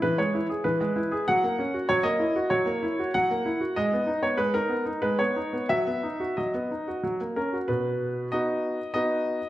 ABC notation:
X:1
M:3/4
L:1/16
Q:1/4=96
K:B
V:1 name="Grand piano"
B c3 B4 f4 | c d3 c4 f4 | d3 c B A3 B c3 | e4 d4 z2 A2 |
B4 d4 d4 |]
V:2 name="Grand piano"
E, G, E G E, G, E G F, A, C F | F, A, E F F, A, E F F, A, E F | G, B, D B, G, D B, D G, B, D B, | F, B, D F F, B, D F F, A, C F |
B,,4 [B,DF]4 [B,DF]4 |]